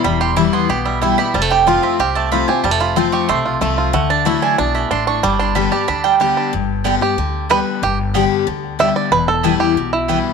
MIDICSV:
0, 0, Header, 1, 5, 480
1, 0, Start_track
1, 0, Key_signature, 1, "major"
1, 0, Tempo, 323974
1, 71, Time_signature, 4, 2, 24, 8
1, 15309, End_track
2, 0, Start_track
2, 0, Title_t, "Mandolin"
2, 0, Program_c, 0, 25
2, 65, Note_on_c, 0, 83, 100
2, 300, Note_off_c, 0, 83, 0
2, 306, Note_on_c, 0, 84, 95
2, 535, Note_off_c, 0, 84, 0
2, 541, Note_on_c, 0, 86, 115
2, 779, Note_off_c, 0, 86, 0
2, 785, Note_on_c, 0, 84, 94
2, 1022, Note_off_c, 0, 84, 0
2, 1027, Note_on_c, 0, 83, 89
2, 1260, Note_off_c, 0, 83, 0
2, 1266, Note_on_c, 0, 76, 83
2, 1500, Note_off_c, 0, 76, 0
2, 1506, Note_on_c, 0, 79, 96
2, 1741, Note_off_c, 0, 79, 0
2, 1747, Note_on_c, 0, 83, 121
2, 1981, Note_off_c, 0, 83, 0
2, 1987, Note_on_c, 0, 81, 89
2, 2225, Note_off_c, 0, 81, 0
2, 2231, Note_on_c, 0, 79, 106
2, 2466, Note_off_c, 0, 79, 0
2, 2471, Note_on_c, 0, 77, 88
2, 2707, Note_off_c, 0, 77, 0
2, 2711, Note_on_c, 0, 76, 91
2, 2946, Note_off_c, 0, 76, 0
2, 2954, Note_on_c, 0, 77, 89
2, 3189, Note_off_c, 0, 77, 0
2, 3191, Note_on_c, 0, 81, 107
2, 3424, Note_off_c, 0, 81, 0
2, 3430, Note_on_c, 0, 83, 99
2, 3665, Note_off_c, 0, 83, 0
2, 3671, Note_on_c, 0, 80, 86
2, 3901, Note_off_c, 0, 80, 0
2, 3907, Note_on_c, 0, 81, 98
2, 4145, Note_off_c, 0, 81, 0
2, 4152, Note_on_c, 0, 83, 107
2, 4382, Note_off_c, 0, 83, 0
2, 4388, Note_on_c, 0, 84, 99
2, 4622, Note_off_c, 0, 84, 0
2, 4627, Note_on_c, 0, 85, 112
2, 4863, Note_off_c, 0, 85, 0
2, 4869, Note_on_c, 0, 84, 118
2, 5016, Note_off_c, 0, 84, 0
2, 5830, Note_on_c, 0, 78, 93
2, 6067, Note_off_c, 0, 78, 0
2, 6076, Note_on_c, 0, 81, 108
2, 6306, Note_off_c, 0, 81, 0
2, 6312, Note_on_c, 0, 83, 119
2, 6546, Note_off_c, 0, 83, 0
2, 6552, Note_on_c, 0, 80, 91
2, 6785, Note_off_c, 0, 80, 0
2, 6790, Note_on_c, 0, 81, 81
2, 7026, Note_off_c, 0, 81, 0
2, 7032, Note_on_c, 0, 83, 98
2, 7266, Note_off_c, 0, 83, 0
2, 7273, Note_on_c, 0, 84, 97
2, 7508, Note_off_c, 0, 84, 0
2, 7516, Note_on_c, 0, 85, 101
2, 7747, Note_off_c, 0, 85, 0
2, 7752, Note_on_c, 0, 86, 108
2, 7987, Note_off_c, 0, 86, 0
2, 7993, Note_on_c, 0, 84, 96
2, 8220, Note_off_c, 0, 84, 0
2, 8226, Note_on_c, 0, 83, 92
2, 8463, Note_off_c, 0, 83, 0
2, 8469, Note_on_c, 0, 81, 90
2, 8703, Note_off_c, 0, 81, 0
2, 8710, Note_on_c, 0, 83, 102
2, 8942, Note_off_c, 0, 83, 0
2, 8948, Note_on_c, 0, 79, 122
2, 9093, Note_off_c, 0, 79, 0
2, 10139, Note_on_c, 0, 59, 98
2, 10145, Note_on_c, 0, 67, 94
2, 10148, Note_on_c, 0, 74, 100
2, 10156, Note_on_c, 0, 79, 93
2, 10279, Note_off_c, 0, 59, 0
2, 10282, Note_off_c, 0, 67, 0
2, 10283, Note_off_c, 0, 74, 0
2, 10287, Note_off_c, 0, 79, 0
2, 11104, Note_on_c, 0, 59, 87
2, 11110, Note_on_c, 0, 67, 90
2, 11115, Note_on_c, 0, 74, 101
2, 11117, Note_on_c, 0, 79, 103
2, 11241, Note_off_c, 0, 59, 0
2, 11244, Note_off_c, 0, 67, 0
2, 11246, Note_off_c, 0, 74, 0
2, 11248, Note_off_c, 0, 79, 0
2, 12062, Note_on_c, 0, 59, 90
2, 12065, Note_on_c, 0, 67, 93
2, 12072, Note_on_c, 0, 74, 99
2, 12074, Note_on_c, 0, 79, 107
2, 12200, Note_off_c, 0, 59, 0
2, 12201, Note_off_c, 0, 67, 0
2, 12205, Note_off_c, 0, 74, 0
2, 12206, Note_off_c, 0, 79, 0
2, 13023, Note_on_c, 0, 59, 90
2, 13029, Note_on_c, 0, 67, 91
2, 13035, Note_on_c, 0, 74, 96
2, 13038, Note_on_c, 0, 79, 105
2, 13160, Note_off_c, 0, 59, 0
2, 13163, Note_off_c, 0, 67, 0
2, 13166, Note_off_c, 0, 74, 0
2, 13168, Note_off_c, 0, 79, 0
2, 13975, Note_on_c, 0, 59, 91
2, 13982, Note_on_c, 0, 64, 105
2, 13986, Note_on_c, 0, 71, 96
2, 13992, Note_on_c, 0, 79, 102
2, 14117, Note_off_c, 0, 59, 0
2, 14120, Note_off_c, 0, 64, 0
2, 14122, Note_off_c, 0, 71, 0
2, 14125, Note_off_c, 0, 79, 0
2, 14940, Note_on_c, 0, 59, 91
2, 14942, Note_on_c, 0, 64, 82
2, 14949, Note_on_c, 0, 71, 105
2, 14952, Note_on_c, 0, 79, 94
2, 15080, Note_off_c, 0, 59, 0
2, 15081, Note_off_c, 0, 64, 0
2, 15084, Note_off_c, 0, 71, 0
2, 15086, Note_off_c, 0, 79, 0
2, 15309, End_track
3, 0, Start_track
3, 0, Title_t, "Five-string banjo"
3, 0, Program_c, 1, 105
3, 0, Note_on_c, 1, 64, 51
3, 65, Note_on_c, 1, 55, 75
3, 308, Note_on_c, 1, 67, 65
3, 504, Note_off_c, 1, 64, 0
3, 547, Note_on_c, 1, 64, 58
3, 742, Note_off_c, 1, 55, 0
3, 790, Note_on_c, 1, 59, 63
3, 984, Note_off_c, 1, 67, 0
3, 1033, Note_on_c, 1, 67, 71
3, 1224, Note_off_c, 1, 64, 0
3, 1272, Note_on_c, 1, 55, 52
3, 1465, Note_off_c, 1, 59, 0
3, 1516, Note_on_c, 1, 64, 62
3, 1708, Note_off_c, 1, 67, 0
3, 1761, Note_on_c, 1, 67, 54
3, 1946, Note_off_c, 1, 55, 0
3, 1996, Note_off_c, 1, 64, 0
3, 1998, Note_off_c, 1, 67, 0
3, 1998, Note_on_c, 1, 55, 79
3, 2098, Note_off_c, 1, 55, 0
3, 2098, Note_on_c, 1, 57, 70
3, 2245, Note_on_c, 1, 67, 61
3, 2479, Note_off_c, 1, 57, 0
3, 2480, Note_on_c, 1, 65, 66
3, 2717, Note_on_c, 1, 60, 57
3, 2913, Note_off_c, 1, 67, 0
3, 2964, Note_on_c, 1, 67, 75
3, 3151, Note_off_c, 1, 65, 0
3, 3205, Note_on_c, 1, 57, 56
3, 3389, Note_off_c, 1, 60, 0
3, 3443, Note_on_c, 1, 65, 59
3, 3633, Note_off_c, 1, 67, 0
3, 3686, Note_on_c, 1, 67, 53
3, 3918, Note_off_c, 1, 57, 0
3, 3924, Note_on_c, 1, 55, 68
3, 4017, Note_off_c, 1, 55, 0
3, 4017, Note_on_c, 1, 57, 69
3, 4113, Note_off_c, 1, 65, 0
3, 4159, Note_on_c, 1, 65, 61
3, 4353, Note_off_c, 1, 67, 0
3, 4397, Note_on_c, 1, 60, 62
3, 4399, Note_off_c, 1, 57, 0
3, 4640, Note_on_c, 1, 67, 60
3, 4830, Note_off_c, 1, 65, 0
3, 4880, Note_on_c, 1, 57, 71
3, 5070, Note_off_c, 1, 60, 0
3, 5120, Note_on_c, 1, 65, 52
3, 5310, Note_off_c, 1, 67, 0
3, 5349, Note_off_c, 1, 57, 0
3, 5355, Note_on_c, 1, 57, 75
3, 5580, Note_off_c, 1, 65, 0
3, 5598, Note_on_c, 1, 65, 57
3, 5831, Note_off_c, 1, 57, 0
3, 5837, Note_off_c, 1, 65, 0
3, 5837, Note_on_c, 1, 57, 74
3, 6075, Note_on_c, 1, 62, 59
3, 6310, Note_off_c, 1, 57, 0
3, 6316, Note_on_c, 1, 57, 66
3, 6552, Note_off_c, 1, 62, 0
3, 6558, Note_on_c, 1, 62, 63
3, 6785, Note_off_c, 1, 62, 0
3, 6791, Note_on_c, 1, 62, 75
3, 6988, Note_off_c, 1, 57, 0
3, 7036, Note_on_c, 1, 57, 48
3, 7265, Note_off_c, 1, 62, 0
3, 7271, Note_on_c, 1, 62, 66
3, 7508, Note_off_c, 1, 62, 0
3, 7513, Note_on_c, 1, 62, 56
3, 7707, Note_off_c, 1, 57, 0
3, 7753, Note_on_c, 1, 55, 76
3, 7986, Note_off_c, 1, 62, 0
3, 7992, Note_on_c, 1, 62, 60
3, 8214, Note_off_c, 1, 55, 0
3, 8231, Note_on_c, 1, 55, 63
3, 8475, Note_on_c, 1, 67, 62
3, 8664, Note_off_c, 1, 62, 0
3, 8718, Note_on_c, 1, 62, 67
3, 8904, Note_off_c, 1, 55, 0
3, 8961, Note_on_c, 1, 55, 47
3, 9145, Note_off_c, 1, 67, 0
3, 9199, Note_on_c, 1, 67, 65
3, 9387, Note_off_c, 1, 62, 0
3, 9440, Note_on_c, 1, 62, 59
3, 9628, Note_off_c, 1, 55, 0
3, 9676, Note_off_c, 1, 62, 0
3, 9676, Note_off_c, 1, 67, 0
3, 10405, Note_on_c, 1, 67, 75
3, 11067, Note_off_c, 1, 67, 0
3, 11125, Note_on_c, 1, 71, 112
3, 11607, Note_on_c, 1, 67, 82
3, 11612, Note_off_c, 1, 71, 0
3, 11823, Note_off_c, 1, 67, 0
3, 13038, Note_on_c, 1, 76, 116
3, 13258, Note_off_c, 1, 76, 0
3, 13276, Note_on_c, 1, 74, 96
3, 13496, Note_off_c, 1, 74, 0
3, 13510, Note_on_c, 1, 71, 116
3, 13750, Note_on_c, 1, 69, 111
3, 13758, Note_off_c, 1, 71, 0
3, 14224, Note_on_c, 1, 67, 86
3, 14246, Note_off_c, 1, 69, 0
3, 14674, Note_off_c, 1, 67, 0
3, 14710, Note_on_c, 1, 64, 83
3, 15309, Note_off_c, 1, 64, 0
3, 15309, End_track
4, 0, Start_track
4, 0, Title_t, "Steel-string acoustic guitar"
4, 0, Program_c, 2, 25
4, 64, Note_on_c, 2, 40, 95
4, 539, Note_on_c, 2, 52, 95
4, 548, Note_on_c, 2, 55, 84
4, 554, Note_on_c, 2, 59, 85
4, 563, Note_on_c, 2, 64, 95
4, 982, Note_off_c, 2, 40, 0
4, 1003, Note_off_c, 2, 52, 0
4, 1008, Note_off_c, 2, 55, 0
4, 1010, Note_off_c, 2, 59, 0
4, 1015, Note_off_c, 2, 64, 0
4, 1033, Note_on_c, 2, 47, 89
4, 1503, Note_on_c, 2, 52, 77
4, 1517, Note_on_c, 2, 55, 85
4, 1522, Note_on_c, 2, 59, 89
4, 1530, Note_on_c, 2, 64, 94
4, 1732, Note_off_c, 2, 64, 0
4, 1740, Note_off_c, 2, 52, 0
4, 1747, Note_off_c, 2, 55, 0
4, 1750, Note_off_c, 2, 59, 0
4, 1750, Note_on_c, 2, 64, 64
4, 1777, Note_on_c, 2, 59, 53
4, 1947, Note_off_c, 2, 47, 0
4, 1983, Note_off_c, 2, 64, 0
4, 1992, Note_on_c, 2, 41, 95
4, 1996, Note_off_c, 2, 59, 0
4, 2468, Note_on_c, 2, 53, 90
4, 2478, Note_on_c, 2, 57, 94
4, 2488, Note_on_c, 2, 60, 97
4, 2495, Note_on_c, 2, 65, 106
4, 2907, Note_off_c, 2, 41, 0
4, 2929, Note_off_c, 2, 53, 0
4, 2934, Note_off_c, 2, 57, 0
4, 2938, Note_off_c, 2, 60, 0
4, 2942, Note_off_c, 2, 65, 0
4, 2959, Note_on_c, 2, 48, 90
4, 3432, Note_on_c, 2, 53, 89
4, 3438, Note_on_c, 2, 57, 85
4, 3446, Note_on_c, 2, 60, 76
4, 3455, Note_on_c, 2, 65, 91
4, 3656, Note_off_c, 2, 65, 0
4, 3666, Note_off_c, 2, 53, 0
4, 3669, Note_off_c, 2, 57, 0
4, 3673, Note_off_c, 2, 60, 0
4, 3674, Note_on_c, 2, 65, 64
4, 3700, Note_on_c, 2, 60, 54
4, 3871, Note_off_c, 2, 48, 0
4, 3905, Note_off_c, 2, 65, 0
4, 3913, Note_on_c, 2, 41, 87
4, 3919, Note_off_c, 2, 60, 0
4, 4388, Note_on_c, 2, 53, 86
4, 4398, Note_on_c, 2, 57, 94
4, 4407, Note_on_c, 2, 60, 101
4, 4414, Note_on_c, 2, 65, 103
4, 4827, Note_off_c, 2, 41, 0
4, 4849, Note_off_c, 2, 53, 0
4, 4854, Note_off_c, 2, 57, 0
4, 4858, Note_off_c, 2, 60, 0
4, 4862, Note_off_c, 2, 65, 0
4, 4876, Note_on_c, 2, 48, 84
4, 5348, Note_on_c, 2, 53, 81
4, 5356, Note_on_c, 2, 57, 95
4, 5364, Note_on_c, 2, 60, 105
4, 5372, Note_on_c, 2, 65, 84
4, 5788, Note_off_c, 2, 48, 0
4, 5808, Note_off_c, 2, 53, 0
4, 5812, Note_off_c, 2, 57, 0
4, 5816, Note_off_c, 2, 60, 0
4, 5820, Note_off_c, 2, 65, 0
4, 5828, Note_on_c, 2, 50, 105
4, 6300, Note_on_c, 2, 54, 92
4, 6312, Note_on_c, 2, 57, 88
4, 6317, Note_on_c, 2, 64, 102
4, 6326, Note_on_c, 2, 66, 100
4, 6744, Note_off_c, 2, 50, 0
4, 6764, Note_off_c, 2, 54, 0
4, 6770, Note_off_c, 2, 57, 0
4, 6773, Note_off_c, 2, 64, 0
4, 6777, Note_off_c, 2, 66, 0
4, 6792, Note_on_c, 2, 47, 83
4, 7250, Note_off_c, 2, 47, 0
4, 7276, Note_on_c, 2, 45, 82
4, 7731, Note_off_c, 2, 45, 0
4, 7757, Note_on_c, 2, 43, 100
4, 8225, Note_on_c, 2, 50, 88
4, 8237, Note_on_c, 2, 55, 87
4, 8240, Note_on_c, 2, 59, 102
4, 8250, Note_on_c, 2, 67, 102
4, 8449, Note_off_c, 2, 67, 0
4, 8460, Note_off_c, 2, 50, 0
4, 8466, Note_off_c, 2, 55, 0
4, 8467, Note_on_c, 2, 67, 60
4, 8468, Note_off_c, 2, 59, 0
4, 8494, Note_on_c, 2, 59, 49
4, 8667, Note_off_c, 2, 43, 0
4, 8700, Note_off_c, 2, 67, 0
4, 8711, Note_on_c, 2, 50, 86
4, 8714, Note_off_c, 2, 59, 0
4, 9165, Note_off_c, 2, 50, 0
4, 9183, Note_on_c, 2, 50, 79
4, 9195, Note_on_c, 2, 55, 78
4, 9204, Note_on_c, 2, 59, 96
4, 9210, Note_on_c, 2, 67, 91
4, 9643, Note_off_c, 2, 50, 0
4, 9649, Note_off_c, 2, 55, 0
4, 9654, Note_off_c, 2, 59, 0
4, 9657, Note_off_c, 2, 67, 0
4, 9673, Note_on_c, 2, 43, 98
4, 10147, Note_on_c, 2, 50, 91
4, 10159, Note_on_c, 2, 55, 78
4, 10166, Note_on_c, 2, 59, 86
4, 10174, Note_on_c, 2, 67, 97
4, 10371, Note_off_c, 2, 67, 0
4, 10380, Note_off_c, 2, 50, 0
4, 10386, Note_off_c, 2, 55, 0
4, 10389, Note_on_c, 2, 67, 63
4, 10390, Note_off_c, 2, 59, 0
4, 10410, Note_on_c, 2, 59, 47
4, 10584, Note_off_c, 2, 43, 0
4, 10620, Note_off_c, 2, 67, 0
4, 10630, Note_off_c, 2, 59, 0
4, 10638, Note_on_c, 2, 50, 82
4, 11092, Note_off_c, 2, 50, 0
4, 11110, Note_on_c, 2, 50, 81
4, 11116, Note_on_c, 2, 55, 81
4, 11128, Note_on_c, 2, 59, 84
4, 11135, Note_on_c, 2, 67, 76
4, 11566, Note_off_c, 2, 50, 0
4, 11569, Note_off_c, 2, 55, 0
4, 11575, Note_off_c, 2, 59, 0
4, 11579, Note_off_c, 2, 67, 0
4, 11598, Note_on_c, 2, 43, 99
4, 12070, Note_on_c, 2, 50, 90
4, 12080, Note_on_c, 2, 55, 94
4, 12089, Note_on_c, 2, 59, 91
4, 12095, Note_on_c, 2, 67, 100
4, 12506, Note_off_c, 2, 43, 0
4, 12526, Note_off_c, 2, 50, 0
4, 12531, Note_off_c, 2, 55, 0
4, 12535, Note_off_c, 2, 59, 0
4, 12539, Note_off_c, 2, 67, 0
4, 12547, Note_on_c, 2, 50, 89
4, 13003, Note_off_c, 2, 50, 0
4, 13020, Note_on_c, 2, 50, 83
4, 13033, Note_on_c, 2, 55, 75
4, 13038, Note_on_c, 2, 59, 87
4, 13047, Note_on_c, 2, 67, 88
4, 13482, Note_off_c, 2, 50, 0
4, 13488, Note_off_c, 2, 55, 0
4, 13490, Note_off_c, 2, 59, 0
4, 13495, Note_off_c, 2, 67, 0
4, 13510, Note_on_c, 2, 40, 99
4, 13984, Note_on_c, 2, 52, 91
4, 13995, Note_on_c, 2, 55, 100
4, 14005, Note_on_c, 2, 59, 93
4, 14011, Note_on_c, 2, 64, 88
4, 14423, Note_off_c, 2, 40, 0
4, 14444, Note_off_c, 2, 52, 0
4, 14450, Note_off_c, 2, 55, 0
4, 14454, Note_off_c, 2, 59, 0
4, 14457, Note_off_c, 2, 64, 0
4, 14477, Note_on_c, 2, 47, 80
4, 14944, Note_on_c, 2, 52, 75
4, 14955, Note_on_c, 2, 55, 87
4, 14961, Note_on_c, 2, 59, 94
4, 14973, Note_on_c, 2, 64, 78
4, 15309, Note_off_c, 2, 47, 0
4, 15309, Note_off_c, 2, 52, 0
4, 15309, Note_off_c, 2, 55, 0
4, 15309, Note_off_c, 2, 59, 0
4, 15309, Note_off_c, 2, 64, 0
4, 15309, End_track
5, 0, Start_track
5, 0, Title_t, "Upright bass"
5, 0, Program_c, 3, 32
5, 65, Note_on_c, 3, 28, 86
5, 702, Note_off_c, 3, 28, 0
5, 1026, Note_on_c, 3, 35, 76
5, 1663, Note_off_c, 3, 35, 0
5, 1987, Note_on_c, 3, 29, 102
5, 2624, Note_off_c, 3, 29, 0
5, 2953, Note_on_c, 3, 36, 76
5, 3588, Note_off_c, 3, 36, 0
5, 3908, Note_on_c, 3, 29, 90
5, 4544, Note_off_c, 3, 29, 0
5, 4874, Note_on_c, 3, 35, 70
5, 5283, Note_off_c, 3, 35, 0
5, 5352, Note_on_c, 3, 36, 93
5, 5762, Note_off_c, 3, 36, 0
5, 5829, Note_on_c, 3, 38, 91
5, 6464, Note_off_c, 3, 38, 0
5, 6794, Note_on_c, 3, 35, 84
5, 7203, Note_off_c, 3, 35, 0
5, 7269, Note_on_c, 3, 33, 83
5, 7679, Note_off_c, 3, 33, 0
5, 7756, Note_on_c, 3, 31, 98
5, 8388, Note_off_c, 3, 31, 0
5, 8716, Note_on_c, 3, 38, 72
5, 9348, Note_off_c, 3, 38, 0
5, 9678, Note_on_c, 3, 31, 95
5, 10309, Note_off_c, 3, 31, 0
5, 10632, Note_on_c, 3, 38, 80
5, 11265, Note_off_c, 3, 38, 0
5, 11589, Note_on_c, 3, 31, 100
5, 12223, Note_off_c, 3, 31, 0
5, 12549, Note_on_c, 3, 38, 80
5, 13183, Note_off_c, 3, 38, 0
5, 13501, Note_on_c, 3, 28, 90
5, 14138, Note_off_c, 3, 28, 0
5, 14463, Note_on_c, 3, 35, 80
5, 15100, Note_off_c, 3, 35, 0
5, 15309, End_track
0, 0, End_of_file